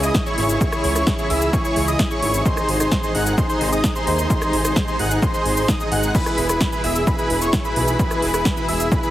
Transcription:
Already playing: detuned saw bass C#2, string section C#3 E3 G#3 E4
0.03 supersaw synth E4 G#4 D#5, analog synth lead D#6, shaker
0.15 kick, snare, shaker
0.26 supersaw synth E4 G#4 C#5, analog synth lead C#6, shaker
0.38 detuned saw bass G#1, supersaw synth E4 G#4 C#5, analog synth lead C#6, open hi-hat
0.49 shaker
0.61 supersaw synth G#4, analog synth lead C#6, kick, shaker
0.72 cross-stick, shaker
0.84 detuned saw bass C#2, open hi-hat
0.95 supersaw synth E4 G#4 C#5, analog synth lead C#6, cross-stick, shaker
1.07 kick, snare, shaker
1.19 supersaw synth E4 G#4 C#5, analog synth lead C#6, shaker
1.30 detuned saw bass C#2, supersaw synth E4 G#4 E5, analog synth lead E6, open hi-hat
1.42 shaker
1.53 supersaw synth E4 G#4 C#5, analog synth lead C#6, kick, shaker
1.65 supersaw synth E4 G#4 C#5, analog synth lead C#6, shaker
1.76 detuned saw bass C#2, open hi-hat
1.88 supersaw synth E4 G#4 D#5, analog synth lead D#6, shaker
1.99 kick, snare, shaker
2.11 supersaw synth E4 G#4 C#5, analog synth lead C#6, shaker
2.22 detuned saw bass G#1, supersaw synth E4 G#4 C#5, analog synth lead C#6, open hi-hat
2.34 shaker
2.45 string section C3 D#3 G#3 D#4, supersaw synth D#4 G#4 C5, analog synth lead C6, kick, shaker
2.57 cross-stick, shaker
2.69 detuned saw bass G#1, open hi-hat
2.80 supersaw synth D#4 G#4 C5, analog synth lead C6, cross-stick, shaker
2.92 kick, snare, shaker
3.03 supersaw synth D#4 G#4 C5, analog synth lead C6, shaker
3.15 detuned saw bass G#1, supersaw synth D#4 G#4 F#5, analog synth lead F#6, open hi-hat
3.26 shaker
3.38 supersaw synth D#4 G#4 C5, analog synth lead C6, kick, shaker
3.49 supersaw synth D#4 G#4 C5, analog synth lead C6, shaker
3.61 detuned saw bass G#1, open hi-hat
3.72 supersaw synth D#4 G#4 D#5, analog synth lead D#6, shaker
3.84 kick, snare, shaker
3.95 supersaw synth D#4 G#4 C5, analog synth lead C6, shaker
4.07 detuned saw bass D#2, supersaw synth D#4 G#4 C5, analog synth lead C6, open hi-hat
4.19 shaker
4.30 supersaw synth D#4 G#4 C5, analog synth lead C6, kick, shaker
4.42 cross-stick, shaker
4.53 detuned saw bass G#1, open hi-hat
4.65 supersaw synth D#4 G#4 C5, analog synth lead C6, cross-stick, shaker
4.76 kick, snare, shaker
4.88 supersaw synth D#4 G#4 C5, analog synth lead C6, shaker
4.99 detuned saw bass G#1, supersaw synth D#4 G#4 F#5, analog synth lead F#6, open hi-hat
5.11 shaker
5.22 supersaw synth C5, analog synth lead C6, kick, shaker
5.34 supersaw synth D#4 G#4 C5, analog synth lead C6, shaker
5.46 detuned saw bass G#1, open hi-hat
5.57 supersaw synth D#4 G#4 C5, analog synth lead C6, open hi-hat, shaker
5.68 supersaw synth D#4, analog synth lead D#6, kick, snare, shaker
5.80 supersaw synth D#4 G#4 D#5, analog synth lead D#6, shaker
5.92 detuned saw bass G#1, supersaw synth D#4 G#4 F#5, analog synth lead F#6, open hi-hat
6.03 shaker
6.15 string section B2 E3 E4, supersaw synth E4 G#4 B4, analog synth lead B5, kick, crash, shaker
6.26 cross-stick, shaker
6.38 detuned saw bass E1, open hi-hat
6.49 supersaw synth E4 G#4 B4, analog synth lead B5, cross-stick, shaker
6.61 kick, snare, shaker
6.72 supersaw synth E4 G#4 B4, analog synth lead B5, shaker
6.84 detuned saw bass E1, supersaw synth E4 G#4 E5, analog synth lead E6, open hi-hat
6.96 shaker
7.07 supersaw synth E4 G#4 B4, analog synth lead B5, kick, shaker
7.19 supersaw synth E4 G#4 B4, analog synth lead B5, shaker
7.30 detuned saw bass E1, open hi-hat
7.42 supersaw synth E4 G#4 C#5, analog synth lead C#6, shaker
7.53 kick, snare, shaker
7.65 supersaw synth E4 G#4 B4, analog synth lead B5, shaker
7.76 detuned saw bass B1, supersaw synth E4 G#4 B4, analog synth lead B5, open hi-hat
7.88 shaker
7.99 supersaw synth E4 G#4 B4, analog synth lead B5, kick, shaker
8.11 cross-stick, shaker
8.22 detuned saw bass E1, open hi-hat
8.34 supersaw synth E4 G#4 B4, analog synth lead B5, cross-stick, shaker
8.45 kick, snare, shaker
8.57 supersaw synth E4 G#4 B4, analog synth lead B5, shaker
8.69 detuned saw bass E1, supersaw synth E4 G#4 E5, analog synth lead E6, open hi-hat
8.80 shaker
8.92 supersaw synth E4 G#4 B4, analog synth lead B5, kick, shaker
9.03 supersaw synth E4 G#4 B4, analog synth lead B5, shaker

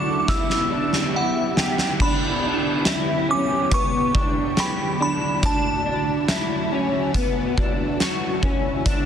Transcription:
Already playing: string machine D3 A3 E4 F#4, clean electric guitar D4, synth bell D6
0.28 string machine B3 G4, clean electric guitar E4, synth bell E6, kick, snare
0.50 snare
0.72 clean electric guitar D4
0.93 snare
1.14 clean electric guitar E4, synth bell F#5
1.57 clean electric guitar G4, snare
1.78 snare
2.00 string machine D3 B3 E4 G4, clean electric guitar D4, synth bell B5, kick, crash
2.43 clean electric guitar D4
2.85 clean electric guitar E4, snare, closed hi-hat
3.29 clean electric guitar C#4, synth bell D6
3.71 clean electric guitar B3, synth bell C#6, kick, closed hi-hat
4.15 clean electric guitar D4, kick
4.57 clean electric guitar G4, synth bell B5, snare, closed hi-hat
5.00 clean electric guitar D4, synth bell B5
5.43 string machine A3 F#4, clean electric guitar D4, synth bell A5, kick, closed hi-hat
5.86 clean electric guitar D4
6.28 clean electric guitar E4, snare, closed hi-hat
6.72 clean electric guitar C#4
7.14 clean electric guitar B3, kick, closed hi-hat
7.57 clean electric guitar D4, kick
8.00 clean electric guitar F#4, snare, closed hi-hat
8.43 clean electric guitar C#4, kick
8.86 string machine B3 G4, clean electric guitar D4, kick, closed hi-hat

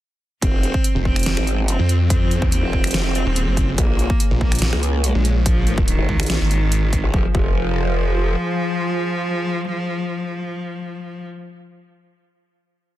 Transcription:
0.42 wobble bass F1, analog synth pad F3 F4 G#4 C5, cello C4, kick, closed hi-hat
0.63 closed hi-hat
0.74 kick
0.84 closed hi-hat
0.95 detuned saw bass F1
1.05 cello C4, kick
1.16 finger snap, closed hi-hat
1.19 closed hi-hat
1.23 snare, closed hi-hat
1.26 closed hi-hat
1.37 wobble bass G#1, finger snap
1.47 closed hi-hat
1.68 cello C4, closed hi-hat
1.79 detuned saw bass F2
1.89 closed hi-hat
2.10 cello C4, kick, closed hi-hat
2.31 closed hi-hat
2.37 detuned saw bass E2
2.42 kick
2.52 cello C4, closed hi-hat
2.63 wobble bass F1
2.73 kick
2.84 finger snap, closed hi-hat
2.87 closed hi-hat
2.91 snare, closed hi-hat
2.94 closed hi-hat
3.15 closed hi-hat
3.26 detuned saw bass D#1
3.36 closed hi-hat
3.47 detuned saw bass F#1
3.57 kick, closed hi-hat
3.78 wobble bass A#1, analog synth pad A#3 C#5, cello A#3, kick, closed hi-hat
3.99 closed hi-hat
4.10 kick
4.20 closed hi-hat
4.31 detuned saw bass A#1
4.41 cello A#3, kick
4.52 finger snap, closed hi-hat
4.55 closed hi-hat
4.59 snare, closed hi-hat
4.62 closed hi-hat
4.73 wobble bass C#2, finger snap
4.83 closed hi-hat
5.04 cello G#3, closed hi-hat
5.15 detuned saw bass A#1
5.25 closed hi-hat
5.46 cello F3, kick, closed hi-hat
5.67 closed hi-hat
5.78 kick
5.88 cello D#3, closed hi-hat
5.99 wobble bass G#1
6.09 detuned saw bass C#2, kick
6.20 wobble bass A#1, finger snap, closed hi-hat
6.23 closed hi-hat
6.26 snare, closed hi-hat
6.30 closed hi-hat
6.41 detuned saw bass G#1
6.51 closed hi-hat
6.72 closed hi-hat
6.93 kick, closed hi-hat
7.04 wobble bass A#1
7.14 wobble bass F1, analog synth pad F3 F4 G#4 C5, cello F3, kick
7.35 wobble bass F1, cello F3, kick

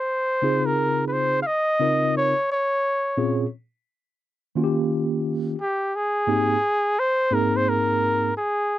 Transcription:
Already playing: flugelhorn C5
0.42 tine electric piano C#3 C4 D#4 F4 G#4
0.66 flugelhorn A#4
1.07 flugelhorn B4
1.13 flugelhorn C5
1.42 flugelhorn F5
1.46 flugelhorn D#5
1.80 tine electric piano C#3 C4 D#4 F4 A#4
2.17 flugelhorn C#5
2.51 flugelhorn C#5
3.17 tine electric piano A#2 C4 C#4 F4 G#4
4.55 tine electric piano D#3 A#3 C#4 F4 F#4
4.64 tine electric piano G4
5.61 flugelhorn G4
5.96 flugelhorn G#4
6.27 tine electric piano G#2 A#3 C4 D#4 G4
6.99 flugelhorn C5
7.31 tine electric piano G#2 A#3 C4 D#4 G#4, flugelhorn A#4
7.56 flugelhorn C5
7.69 flugelhorn A#4
8.37 flugelhorn G#4

